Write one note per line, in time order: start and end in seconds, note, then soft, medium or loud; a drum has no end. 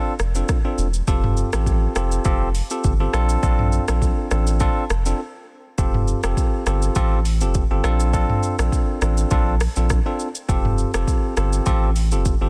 0.00 0.13 C4 medium
0.00 0.13 D4 medium
0.00 0.13 F4 medium
0.00 0.13 A4 loud
0.19 0.43 F1 medium
0.19 cross-stick medium
0.19 shaker soft
0.35 0.57 C4 medium
0.35 0.57 D4 medium
0.35 0.57 F4 medium
0.35 0.57 A4 medium
0.35 shaker medium
0.49 kick loud
0.49 cross-stick medium
0.49 shaker medium
0.65 0.86 C4 medium
0.65 0.86 D4 medium
0.65 0.86 F4 medium
0.65 0.86 A4 medium
0.78 1.02 E1 loud
0.78 shaker soft
0.94 shaker medium
1.07 1.44 F1 loud
1.07 1.49 C4 medium
1.07 1.49 F4 medium
1.07 1.50 G4 medium
1.07 1.50 A4 loud
1.07 kick loud
1.07 shaker medium
1.24 mid tom medium
1.37 shaker soft
1.53 1.87 A1 medium
1.53 1.93 C4 medium
1.53 1.93 F4 medium
1.53 1.93 G4 medium
1.53 1.93 A4 medium
1.53 cross-stick loud
1.53 shaker medium
1.66 kick medium
1.66 shaker medium
1.96 2.19 F1 medium
1.96 2.23 C4 medium
1.96 2.23 F4 medium
1.96 2.23 G4 medium
1.96 2.23 A4 medium
1.96 cross-stick medium
1.96 shaker medium
2.12 shaker medium
2.25 2.61 F1 loud
2.25 2.48 C4 loud
2.25 2.48 F4 medium
2.25 2.48 G4 medium
2.25 2.48 A4 loud
2.25 kick loud
2.25 shaker medium
2.55 open hi-hat soft
2.55 shaker soft
2.70 2.92 C4 medium
2.70 2.92 F4 medium
2.70 2.92 G4 medium
2.70 2.92 A4 medium
2.70 shaker medium
2.84 3.08 G1 loud
2.84 kick loud
2.84 shaker medium
3.00 3.12 C4 medium
3.00 3.12 F4 medium
3.00 3.22 G4 medium
3.00 3.13 A4 medium
3.13 3.37 A#1 loud
3.13 3.41 C4 medium
3.13 3.41 D4 medium
3.13 3.41 F4 medium
3.13 3.41 A4 loud
3.13 cross-stick medium
3.13 shaker soft
3.29 shaker medium
3.43 3.79 A#1 loud
3.43 3.85 C4 medium
3.43 3.85 D4 medium
3.43 3.85 F4 medium
3.43 3.85 A4 loud
3.43 kick loud
3.43 shaker medium
3.59 mid tom medium
3.72 shaker soft
3.88 4.12 A#1 loud
3.88 4.28 C4 medium
3.88 4.28 D4 medium
3.88 4.28 F4 medium
3.88 4.28 A4 medium
3.88 cross-stick loud
3.88 shaker medium
4.02 kick medium
4.02 shaker medium
4.31 4.67 A1 medium
4.31 4.58 C4 medium
4.31 4.59 D4 medium
4.31 4.59 F4 medium
4.31 4.59 A4 medium
4.31 cross-stick medium
4.31 shaker medium
4.47 shaker medium
4.60 4.83 C4 loud
4.60 4.83 D4 medium
4.60 4.83 F4 medium
4.60 4.84 A4 loud
4.60 kick loud
4.60 shaker medium
4.90 5.13 F1 loud
4.90 cross-stick loud
4.90 shaker soft
5.06 5.19 C4 medium
5.06 5.19 D4 medium
5.06 5.19 F4 medium
5.06 5.20 A4 medium
5.06 shaker medium
5.78 6.14 F1 loud
5.78 6.20 C4 medium
5.78 6.20 F4 medium
5.78 6.20 G4 medium
5.78 6.20 A4 loud
5.78 kick loud
5.78 shaker medium
5.94 mid tom medium
6.08 shaker soft
6.23 6.34 F1 loud
6.23 6.63 C4 medium
6.23 6.63 F4 medium
6.23 6.63 G4 medium
6.23 6.64 A4 medium
6.23 cross-stick loud
6.23 shaker medium
6.37 kick medium
6.37 shaker medium
6.66 6.90 G1 loud
6.66 6.94 C4 medium
6.66 6.94 F4 medium
6.66 6.94 G4 medium
6.66 6.94 A4 medium
6.66 cross-stick medium
6.66 shaker medium
6.82 shaker medium
6.95 7.43 A1 loud
6.95 7.19 C4 loud
6.95 7.19 F4 medium
6.95 7.19 G4 medium
6.95 7.19 A4 loud
6.95 kick loud
6.95 shaker medium
7.25 open hi-hat soft
7.25 shaker soft
7.41 7.65 F1 loud
7.41 7.63 C4 medium
7.41 7.63 F4 medium
7.41 7.63 G4 medium
7.41 7.63 A4 medium
7.41 shaker medium
7.54 kick loud
7.54 shaker medium
7.71 7.81 G1 medium
7.71 7.82 C4 medium
7.71 7.83 F4 medium
7.71 7.92 G4 medium
7.71 7.83 A4 medium
7.84 8.31 A#1 medium
7.84 8.11 C4 medium
7.84 8.11 D4 medium
7.84 8.11 F4 medium
7.84 8.12 A4 loud
7.84 cross-stick loud
7.84 shaker medium
8.00 shaker medium
8.13 8.55 C4 medium
8.13 8.55 D4 medium
8.13 8.55 F4 medium
8.13 8.55 A4 loud
8.13 kick loud
8.13 shaker medium
8.30 mid tom medium
8.43 shaker medium
8.59 8.70 A#1 medium
8.59 8.98 C4 medium
8.59 8.99 D4 medium
8.59 8.99 F4 medium
8.59 8.99 A4 medium
8.59 cross-stick loud
8.59 shaker medium
8.72 kick medium
8.72 shaker medium
9.01 9.25 A1 medium
9.01 9.29 C4 medium
9.01 9.29 D4 medium
9.01 9.29 F4 medium
9.01 9.29 A4 medium
9.01 cross-stick medium
9.01 shaker medium
9.17 shaker medium
9.31 9.67 A#1 medium
9.31 9.54 C4 loud
9.31 9.54 D4 medium
9.31 9.54 F4 medium
9.31 9.54 A4 loud
9.31 kick loud
9.31 shaker medium
9.60 cross-stick loud
9.60 open hi-hat soft
9.60 shaker soft
9.76 10.00 A#1 medium
9.76 9.98 C4 medium
9.76 9.98 D4 medium
9.76 9.98 F4 medium
9.76 9.98 A4 medium
9.76 shaker medium
9.90 kick loud
9.90 cross-stick loud
9.90 shaker medium
10.06 10.27 C4 medium
10.06 10.27 D4 medium
10.06 10.28 F4 medium
10.06 10.28 A4 medium
10.19 shaker soft
10.35 shaker medium
10.49 10.85 F1 loud
10.49 10.90 C4 medium
10.49 10.91 F4 medium
10.49 10.91 G4 medium
10.49 10.91 A4 loud
10.49 kick loud
10.49 shaker medium
10.65 mid tom medium
10.78 shaker medium
10.94 11.05 F1 loud
10.94 11.34 C4 medium
10.94 11.34 F4 medium
10.94 11.34 G4 medium
10.94 11.34 A4 medium
10.94 cross-stick loud
10.94 shaker medium
11.08 kick medium
11.08 shaker medium
11.37 11.60 G1 loud
11.37 11.64 C4 medium
11.37 11.64 F4 medium
11.37 11.65 G4 medium
11.37 11.65 A4 medium
11.37 cross-stick medium
11.37 shaker medium
11.53 shaker medium
11.66 12.14 A1 loud
11.66 11.89 C4 loud
11.66 11.89 F4 medium
11.66 11.89 G4 medium
11.66 11.89 A4 loud
11.66 kick loud
11.66 shaker medium
11.96 open hi-hat soft
11.96 shaker soft
12.12 12.35 F1 loud
12.12 12.33 C4 medium
12.12 12.33 F4 medium
12.12 12.34 G4 medium
12.12 12.34 A4 medium
12.12 shaker medium
12.25 kick loud
12.25 shaker medium
12.41 12.49 G1 medium
12.41 12.49 C4 medium
12.41 12.49 F4 medium
12.41 12.49 G4 medium
12.41 12.49 A4 medium